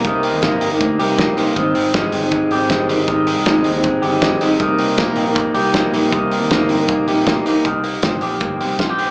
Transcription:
<<
  \new Staff \with { instrumentName = "Clean electric guitar" } { \time 4/4 \key c \minor \tempo 4 = 158 <ees bes c' g'>8 c'8 bes8 c'8 bes8 g'8 bes8 c'8 | ees8 c'8 aes8 c'8 aes8 g'8 aes8 c'8 | ees8 c'8 aes8 c'8 aes8 g'8 aes8 c'8 | ees8 c'8 bes8 c'8 bes8 g'8 bes8 c'8 |
ees8 c'8 bes8 c'8 bes8 g'8 bes8 c'8 | ees8 bes8 c'8 g'8 bes8 c'8 f'16 g'16 c'8 | }
  \new Staff \with { instrumentName = "Steel-string acoustic guitar" } { \time 4/4 \key c \minor <c g bes ees'>4 <c g bes ees'>8. <g bes ees'>8. <c g bes ees'>4 <c g bes ees'>8 | <ees g c' ees'>4 <aes, ees g c' ees'>8. <g c' ees'>8. <ees g c' ees'>4 <aes, ees g c' ees'>8 | <ees g c' ees'>4 <aes, ees g c' ees'>8. <g c' ees'>8. <ees g c' ees'>4 <aes, ees g c' ees'>8 | <c g bes ees'>4 <c g bes ees'>8. <g bes ees'>8. <c g bes ees'>4 <c g bes ees'>8 |
<c g bes ees'>4 <c g bes ees'>8. <g bes ees'>8. <c g bes ees'>4 <c g bes ees'>8 | r1 | }
  \new Staff \with { instrumentName = "Picked electric bass" } { \clef bass \time 4/4 \key c \minor c,8. ees,16 g,,8 g,,8 d,8 c,4 r8 | aes,,8 aes,,4 g,,4 aes,,4 g,,8 | aes,,8. c,16 ees,8 ees,8 aes,,8 g,,4 r8 | c,8 c,4 bes,,4 c,4 bes,,8 |
c,8. ees,16 g,,8 g,,8 c,8 bes,,4 r8 | c,4 g,,8 bes,,8 g,,8 c,4 bes,,8 | }
  \new DrumStaff \with { instrumentName = "Drums" } \drummode { \time 4/4 <hh bd>8 hho8 <hh bd sn>8 hho8 <hh bd>8 hho8 <hh bd sn>8 hho8 | <hh bd>8 hho8 <hh bd sn>8 hho8 <hh bd>8 hho8 <hh bd sn>8 hho8 | <hh bd>8 hho8 <hh bd sn>8 hho8 <hh bd>8 hho8 <hh bd sn>8 hho8 | <hh bd>8 hho8 <hh bd sn>8 hho8 <hh bd>8 hho8 <hh bd sn>8 hho8 |
<hh bd>8 hho8 <hh bd sn>8 hho8 <hh bd>8 hho8 <hh bd sn>8 hho8 | <hh bd>8 hho8 <hh bd sn>8 hho8 <hh bd>8 hho8 <hh bd sn>8 hho8 | }
>>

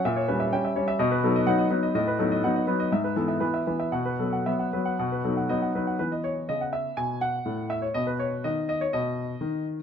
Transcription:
<<
  \new Staff \with { instrumentName = "Grand piano" } { \time 4/4 \key b \mixolydian \tempo 4 = 123 e''16 cis''16 b'16 e''16 g''16 e''16 cis''16 e''16 dis''16 b'16 a'16 dis''16 fis''16 dis''16 b'16 dis''16 | dis''16 b'16 a'16 dis''16 fis''16 dis''16 b'16 dis''16 e''16 b'16 a'16 e''16 b'16 e''16 b'16 e''16 | fis''16 b'16 a'16 fis''16 e''16 fis''16 b'16 fis''16 fis''16 b'16 a'16 fis''16 dis''16 fis''16 b'16 fis''16 | b'16 dis''16 cis''8 dis''16 fis''16 e''8 gis''8 fis''4 e''16 cis''16 |
dis''16 b'16 cis''8 dis''8 dis''16 cis''16 dis''4. r8 | }
  \new Staff \with { instrumentName = "Grand piano" } { \clef bass \time 4/4 \key b \mixolydian << { r1 | r1 | r1 | b1 |
b1 | } \\ { ais,8 <g cis'>8 <g cis'>8 <g cis'>8 b,8 <fis b dis'>8 <fis b dis'>8 <fis b dis'>8 | a,8 <fis b dis'>8 <fis b dis'>8 <fis b dis'>8 gis,8 <e b>8 <e b>8 <e b>8 | b,8 <fis b>8 <fis b>8 <fis b>8 b,8 <fis b dis'>8 <fis b dis'>8 <fis b dis'>8 | e4 cis4 b,4 a,4 |
b,4 dis4 b,4 dis4 | } >> }
>>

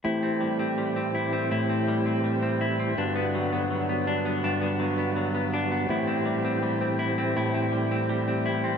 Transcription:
<<
  \new Staff \with { instrumentName = "Clean electric guitar" } { \time 4/4 \key a \dorian \tempo 4 = 82 <a, e'>16 c'16 g16 c'16 g16 c'16 e'16 c'16 <a, e'>16 c'16 g16 c'16 g16 c'16 e'16 c'16 | <g, d'>16 b16 fis16 b16 fis16 b16 d'16 b16 <g, d'>16 b16 fis16 b16 fis16 b16 d'16 b16 | <a, e'>16 c'16 g16 c'16 g16 c'16 e'16 c'16 <a, e'>16 c'16 g16 c'16 g16 c'16 e'16 c'16 | }
  \new Staff \with { instrumentName = "Tonewheel organ" } { \clef bass \time 4/4 \key a \dorian <a, e c' g'>1 | <g, d b fis'>1 | <a, e c' g'>1 | }
>>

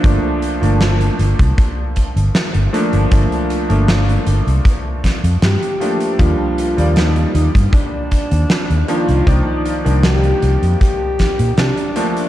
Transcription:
<<
  \new Staff \with { instrumentName = "Alto saxophone" } { \time 4/4 \key g \minor \tempo 4 = 78 r1 | r2. g'4 | f'4 ees'8 ees'8 d'4. f'8 | ees'8 r8 g'4 g'4 d'4 | }
  \new Staff \with { instrumentName = "Electric grand piano" } { \time 4/4 \key g \minor <f a bes d'>8. <f a bes d'>2~ <f a bes d'>8. <f a bes d'>8 | <f a bes d'>8. <f a bes d'>2~ <f a bes d'>8. <f a bes d'>8 | <f g bes d'>8. <f g bes d''>2~ <f g bes d''>8. <ees f bes d'>8 | <ees f bes d''>8. <ees f bes d'>2~ <ees f bes d'>8. <f a bes d'>8 | }
  \new Staff \with { instrumentName = "Fretless electric bass" } { \clef bass \time 4/4 \key g \minor g,,16 r8 g,,8 r16 g,,16 c,16 r8. g,,16 r16 g,,16 r16 g,,16 | g,,16 r8 g,,8 r16 g,,16 c,16 r8. f,16 g,16 r8. | ees,16 r8 ees,8 r16 ees,16 g,16 r8. ees,16 r16 ees,16 r16 c,16 | c,16 r8 c,8 r16 c,16 f,16 r8. bes,16 c16 r8. | }
  \new DrumStaff \with { instrumentName = "Drums" } \drummode { \time 4/4 <hh bd>8 hh16 hh16 <hh sn>16 hh16 hh16 <hh bd>16 <hh bd>8 <hh bd>16 hh16 <hh sn>16 hh16 hh16 hh16 | <hh bd>16 hh16 hh16 hh16 <hh sn>16 hh16 hh16 hh16 <hh bd>8 <hh bd sn>16 hh16 <hh sn>16 hh16 hh16 hh16 | <hh bd>8 hh16 hh16 <hh sn>16 hh16 hh16 <hh bd>16 <hh bd>8 <hh bd>16 hh16 <hh sn>16 hh16 hh16 hh16 | <hh bd>8 hh16 hh16 <hh sn>16 hh16 hh16 hh16 <hh bd>8 <hh bd sn>16 hh16 <hh sn>16 hh16 hh16 hh16 | }
>>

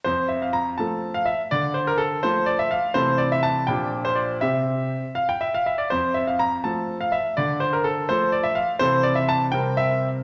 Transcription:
<<
  \new Staff \with { instrumentName = "Grand piano" } { \time 6/8 \key f \major \tempo 4. = 82 c''8 e''16 f''16 bes''8 a''8. f''16 e''8 | d''8 c''16 bes'16 a'8 c''8 d''16 e''16 f''8 | c''8 d''16 e''16 a''8 g''8. c''16 d''8 | e''4. f''16 g''16 e''16 f''16 e''16 d''16 |
c''8 e''16 f''16 bes''8 a''8. f''16 e''8 | d''8 c''16 bes'16 a'8 c''8 d''16 e''16 f''8 | c''8 d''16 e''16 a''8 g''8 e''4 | }
  \new Staff \with { instrumentName = "Grand piano" } { \time 6/8 \key f \major f,4. <f a a'>4. | d4. <f a a'>4. | <c e a a'>4. <bes, f d' g'>4. | <c c' g'>4. r4. |
f,4. <f a a'>4. | d4. <f a a'>4. | <c e c' a'>4. <c g c' bes'>4. | }
>>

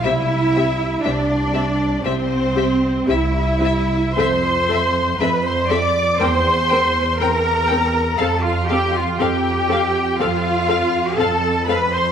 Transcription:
<<
  \new Staff \with { instrumentName = "Violin section" } { \time 4/4 \key c \major \tempo 4 = 60 e''4 d''4 c''4 e''4 | c'''4 b''16 c'''16 d'''8 c'''4 bes''4 | a''16 f''16 g''16 f''16 g''4 f''4 a''8 b''16 c'''16 | }
  \new Staff \with { instrumentName = "Violin section" } { \time 4/4 \key c \major e''8 e''8 e''8 e''8 e''8 e''8 e''8 e''8 | e''8 e''8 e''8 e''8 g''8 g''8 g''8 g''8 | f''8 f''8 f''8 f''8 f''8 f''8 f''8 f''8 | }
  \new Staff \with { instrumentName = "Cello section" } { \time 4/4 \key c \major e'4 d'4 c'4 e'4 | c''4 b'16 c''16 d''8 c''4 bes'4 | a'16 f'16 g'16 f'16 g'4 f'4 a'8 b'16 c''16 | }
  \new Staff \with { instrumentName = "Viola section" } { \time 4/4 \key c \major <c' g'>8 <c' g'>8 <c' g'>8 <c' g'>8 <c' g'>8 <c' g'>8 <c' g'>8 <c' g'>8 | <c' a'>8 <c' a'>8 <c' a'>8 <c' a'>8 <c' bes'>8 <c' bes'>8 <c' bes'>8 <c' bes'>8 | <c' a'>8 <c' a'>8 <c' a'>8 <c' a'>8 <c' a'>8 <c' a'>8 <c' a'>8 <c' a'>8 | }
  \new Staff \with { instrumentName = "Double bass section" } { \clef bass \time 4/4 \key c \major c,4 c,4 c,4 c,4 | f,4 f,4 e,4 e,4 | f,4 f,4 f,4 f,4 | }
>>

